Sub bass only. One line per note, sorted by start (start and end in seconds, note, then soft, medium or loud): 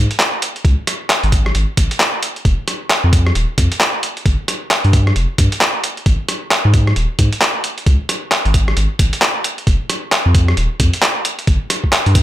0.65 0.75 C#2 medium
1.24 1.51 G#1 medium
1.55 1.65 G#1 medium
1.77 1.88 G#1 loud
2.45 2.55 F1 loud
3.04 3.32 F2 medium
3.35 3.46 D#1 medium
3.58 3.68 F2 loud
4.26 4.36 G1 loud
4.84 5.12 G2 medium
5.16 5.26 F1 medium
5.38 5.49 G2 loud
6.06 6.16 G#1 loud
6.65 6.93 G#2 medium
6.96 7.07 D#1 medium
7.19 7.29 G#2 loud
7.86 7.97 C#2 loud
8.45 8.73 G#1 medium
8.77 8.87 G#1 medium
8.99 9.10 G#1 loud
9.67 9.77 F1 loud
10.26 10.54 F2 medium
10.57 10.67 D#1 medium
10.80 10.90 F2 loud
11.47 11.58 G1 loud
12.06 12.23 G2 medium